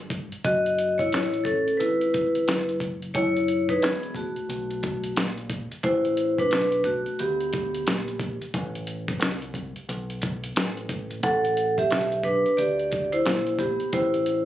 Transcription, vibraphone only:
0.44 F#4 D#5
0.98 E4 C#5
1.44 C#4 A4
1.77 E4 B4
3.14 E4 C#5
3.70 D#4 B4
3.83 B3 G#4
4.16 A3 F#4
5.83 E4 C5
6.38 D4 B4
6.85 A3 F#4
7.19 B3 G4
11.23 A4 F#5
11.78 G4 E5
12.24 D4 B4
12.57 G4 D5
13.12 E4 C5
13.59 B3 G4
13.93 E4 C5

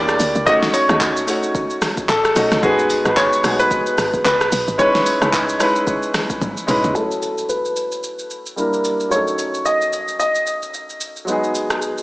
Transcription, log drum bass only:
Already playing: E2
0.20 D2
0.36 C#2
0.90 D#2
2.09 A1
2.36 B1
2.52 C#2
2.63 G#1
3.06 G#1
3.44 B1
3.98 G#1
4.25 C#2
4.52 B1
4.68 G#1
5.22 C#2
6.42 G#1
6.68 B1
6.84 C#2

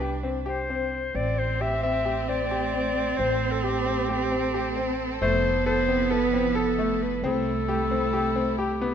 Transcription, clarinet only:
Already playing: B4
0.47 C5
1.15 D5
1.39 C5
1.61 E5
1.83 E5
2.28 D5
3.17 C5
3.52 A4
3.63 G4
5.22 C5
5.67 C5
6.11 B4
6.56 A4
7.03 B4
7.26 A4
8.58 G4

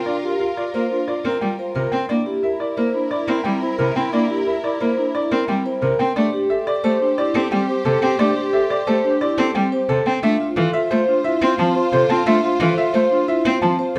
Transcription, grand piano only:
Already playing: G5
0.06 D5
0.40 F5
0.57 D5
0.74 A#4
1.08 D5
1.25 A#4
1.41 G5
1.75 A#4
1.92 G5
2.09 D5
2.43 E5
2.60 D5
2.77 A#4
3.11 D5
3.27 A#4
3.44 G5
3.78 A#4
3.96 G5
4.13 D5
4.47 E5
4.64 D5
4.81 A#4
5.15 D5
5.31 A#4
5.49 G5
5.82 A#4
5.99 G5
6.16 D5
6.50 E5
6.67 D5
6.84 A4
7.18 D5
7.35 A4
7.52 G5
7.85 A4
8.03 G5
8.19 D5
8.53 E5
8.70 D5
8.87 A4
9.21 D5
9.38 A4
9.55 G5
9.89 A4
10.07 G5
10.23 E5
10.57 F5
10.73 E5
10.91 C5
11.24 E5
11.42 C5
11.59 A5
11.93 C5
12.10 A5
12.26 E5
12.60 F5
12.78 E5
12.95 C5
13.28 E5
13.45 C5
13.62 A5

